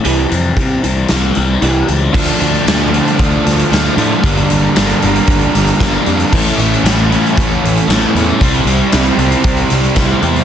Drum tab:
CC |----------------|x---------------|----------------|x---------------|
HH |x-x-x-x-x-x-x-x-|-xxxx-xxx-xxx-x-|xxx-xxxxxxxxx-xx|-xxxx-xxx-xxx-x-|
SD |--------o-------|----o-----o-o---|----o-----o-o---|----o-------o---|
BD |----o-----------|o-------o-------|o-------o---o---|o-------o-------|

CC |----------------|
HH |xxx-xxxxxxxxx-xx|
SD |----o-----o-o---|
BD |o-------o---o---|